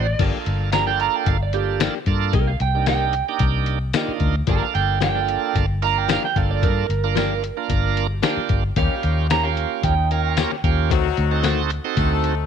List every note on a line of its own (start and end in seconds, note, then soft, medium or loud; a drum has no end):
0.00 0.13 A1 medium
0.00 0.19 D5 loud
0.19 0.30 G1 medium
0.19 0.36 F3 medium
0.19 0.71 A#3 medium
0.19 0.37 A#3 medium
0.19 0.70 D4 medium
0.19 0.37 D4 medium
0.19 0.70 F4 medium
0.19 0.37 G4 medium
0.19 0.70 A4 medium
0.19 kick loud
0.19 closed hi-hat medium
0.19 crash loud
0.46 1.07 G1 medium
0.46 closed hi-hat medium
0.72 0.90 F3 medium
0.72 0.90 A#3 medium
0.72 0.90 D4 medium
0.72 0.91 G4 medium
0.72 0.87 A#5 medium
0.72 snare loud
0.72 closed hi-hat medium
0.72 tambourine loud
0.87 1.37 A#3 medium
0.87 1.37 D4 medium
0.87 1.38 F4 medium
0.87 1.37 A4 medium
0.87 1.00 G5 medium
1.00 1.16 A#5 medium
1.00 closed hi-hat medium
1.16 1.28 G5 medium
1.26 1.88 G1 medium
1.26 1.41 F5 medium
1.26 kick medium
1.26 closed hi-hat medium
1.43 1.54 D5 medium
1.53 1.95 A#3 medium
1.53 1.95 D4 medium
1.53 1.95 F4 medium
1.53 1.80 G4 medium
1.53 1.95 A4 medium
1.53 closed hi-hat medium
1.80 1.97 F3 medium
1.80 1.97 A#3 medium
1.80 1.98 D4 medium
1.80 1.98 G4 medium
1.80 snare loud
1.80 closed hi-hat medium
1.80 tambourine loud
2.06 2.35 G2 medium
2.06 2.34 A#3 medium
2.06 2.34 D4 medium
2.06 2.34 F4 medium
2.06 2.34 A4 loud
2.06 kick medium
2.06 closed hi-hat medium
2.33 2.54 C2 medium
2.33 2.50 A#3 medium
2.33 2.51 D#4 medium
2.33 2.51 G4 medium
2.33 2.48 A#4 medium
2.33 kick loud
2.33 closed hi-hat medium
2.47 2.60 F5 medium
2.60 3.21 C2 loud
2.60 2.87 G5 medium
2.60 closed hi-hat medium
2.75 3.15 A#3 medium
2.75 3.15 D4 medium
2.75 3.15 D#4 medium
2.75 3.15 G4 medium
2.86 3.04 A#3 medium
2.86 3.04 D#4 medium
2.86 3.05 G4 medium
2.86 3.40 G5 medium
2.86 snare medium
2.86 closed hi-hat medium
2.86 tambourine medium
3.13 closed hi-hat medium
3.29 3.79 A#3 medium
3.29 3.79 D4 medium
3.29 3.79 D#4 medium
3.29 3.79 G4 medium
3.39 3.92 C2 loud
3.39 kick medium
3.39 closed hi-hat medium
3.66 closed hi-hat medium
3.93 4.11 A#3 medium
3.93 4.36 A#3 medium
3.93 4.36 D4 medium
3.93 4.36 D#4 medium
3.93 4.12 D#4 medium
3.93 4.36 F4 medium
3.93 4.12 G4 medium
3.93 snare loud
3.93 closed hi-hat medium
3.93 tambourine loud
4.08 muted fingered electric bass stroke soft
4.20 4.41 D2 loud
4.20 kick medium
4.20 closed hi-hat medium
4.47 4.58 G1 medium
4.47 4.64 F3 medium
4.47 4.99 A#3 medium
4.47 4.65 A#3 medium
4.47 4.99 D4 medium
4.47 4.65 D4 medium
4.47 4.99 F4 medium
4.47 4.66 G4 medium
4.47 4.99 A4 medium
4.47 kick loud
4.47 closed hi-hat medium
4.51 4.63 A#4 medium
4.63 4.75 F5 medium
4.75 5.36 G1 medium
4.75 5.01 G5 medium
4.75 closed hi-hat medium
5.01 5.18 F3 medium
5.01 5.18 A#3 medium
5.01 5.19 D4 medium
5.01 5.19 G4 medium
5.01 5.55 G5 loud
5.01 snare loud
5.01 closed hi-hat medium
5.01 tambourine medium
5.15 5.66 A#3 medium
5.15 5.66 D4 medium
5.15 5.66 F4 medium
5.15 5.66 A4 medium
5.28 closed hi-hat medium
5.55 6.16 G1 loud
5.55 kick medium
5.55 closed hi-hat medium
5.82 6.23 A#3 medium
5.82 6.23 D4 medium
5.82 6.23 F4 medium
5.82 6.23 A#4 loud
5.82 5.98 A#5 medium
5.82 closed hi-hat medium
5.98 6.10 G5 medium
6.09 6.25 F3 medium
6.09 6.26 A#3 medium
6.09 6.26 D4 medium
6.09 6.26 G4 medium
6.09 6.24 F5 medium
6.09 snare loud
6.09 closed hi-hat medium
6.09 tambourine loud
6.24 6.38 G5 medium
6.24 snare soft
6.36 6.64 G1 medium
6.36 6.87 A#3 medium
6.36 6.87 D4 medium
6.36 6.87 F4 medium
6.36 6.87 A4 medium
6.36 6.50 F5 medium
6.36 kick medium
6.36 snare soft
6.36 closed hi-hat medium
6.51 6.63 D5 medium
6.63 6.83 G2 loud
6.63 8.19 A#4 loud
6.63 kick loud
6.63 closed hi-hat medium
6.89 7.50 G1 medium
6.89 closed hi-hat medium
7.04 7.44 A#3 medium
7.04 7.44 D4 medium
7.04 7.43 F4 medium
7.04 7.43 A#4 medium
7.16 7.32 F3 medium
7.16 7.33 A#3 medium
7.16 7.33 D4 medium
7.16 7.34 G4 medium
7.16 snare loud
7.16 closed hi-hat medium
7.16 tambourine loud
7.44 closed hi-hat medium
7.57 8.07 A#3 medium
7.57 8.07 D4 medium
7.57 8.07 F4 medium
7.57 8.07 A#4 loud
7.70 8.21 G1 medium
7.70 kick medium
7.70 closed hi-hat loud
7.97 closed hi-hat medium
8.23 8.39 F3 medium
8.23 8.39 A#3 medium
8.23 8.64 A#3 medium
8.23 8.64 D4 medium
8.23 8.40 D4 loud
8.23 8.64 F4 medium
8.23 8.64 G4 loud
8.23 8.40 G4 loud
8.23 snare loud
8.23 closed hi-hat medium
8.23 tambourine loud
8.37 muted fingered electric bass stroke soft
8.37 snare soft
8.49 8.70 G1 medium
8.49 kick medium
8.49 closed hi-hat medium
8.76 8.87 D#2 medium
8.76 9.31 G3 medium
8.76 8.93 A#3 medium
8.76 9.27 A#3 medium
8.76 9.31 C#4 medium
8.76 9.27 C#4 medium
8.76 8.94 C#4 medium
8.76 9.31 D#4 medium
8.76 9.27 F4 medium
8.76 9.27 G4 medium
8.76 9.31 G4 medium
8.76 8.94 G4 medium
8.76 9.29 F5 medium
8.76 kick loud
8.76 closed hi-hat medium
9.03 9.64 D#2 medium
9.03 closed hi-hat medium
9.30 9.47 A#3 medium
9.30 9.47 C#4 medium
9.30 9.48 G4 medium
9.30 9.44 A#5 loud
9.30 snare loud
9.30 closed hi-hat medium
9.30 tambourine loud
9.43 9.94 A#3 medium
9.43 9.95 C#4 medium
9.43 9.95 F4 medium
9.43 9.95 G4 medium
9.43 9.82 F5 medium
9.57 closed hi-hat medium
9.81 10.44 D#2 medium
9.81 10.36 D#3 medium
9.81 10.36 C#4 medium
9.81 10.36 D#4 medium
9.81 10.88 G5 medium
9.81 kick medium
9.81 closed hi-hat medium
10.11 10.51 A#3 medium
10.11 10.51 C#4 medium
10.11 10.51 F4 medium
10.11 10.51 A#4 loud
10.11 closed hi-hat medium
10.37 10.54 A#3 medium
10.37 10.54 C#4 medium
10.37 10.55 G4 medium
10.37 snare loud
10.37 closed hi-hat medium
10.37 tambourine loud
10.52 snare soft
10.64 10.91 D#2 medium
10.64 10.91 A#3 loud
10.64 10.91 C#4 medium
10.64 10.91 F4 medium
10.64 10.91 G4 loud
10.64 kick medium
10.64 closed hi-hat medium
10.90 11.11 D2 medium
10.90 11.07 D#3 medium
10.90 11.44 F#3 loud
10.90 11.07 A3 medium
10.90 11.44 C4 loud
10.90 11.07 C4 medium
10.90 11.44 D#4 medium
10.90 11.44 F#4 loud
10.90 11.08 F#4 loud
10.90 kick loud
10.90 closed hi-hat medium
11.17 11.78 D2 loud
11.17 closed hi-hat medium
11.31 11.71 C4 loud
11.31 11.71 D#4 medium
11.31 11.71 F#4 loud
11.31 11.71 A4 loud
11.43 11.60 D#3 loud
11.43 11.60 A3 medium
11.43 11.61 C4 loud
11.43 11.61 F#4 loud
11.43 snare loud
11.43 closed hi-hat medium
11.43 tambourine loud
11.70 closed hi-hat medium
11.84 12.35 C4 loud
11.84 12.35 D#4 medium
11.84 12.35 F#4 loud
11.84 12.35 A4 loud
11.97 12.46 D2 loud
11.97 12.46 A3 medium
11.97 12.46 C4 medium
11.97 12.46 D#4 medium
11.97 12.46 A4 loud
11.97 kick medium
11.97 closed hi-hat medium
12.24 closed hi-hat medium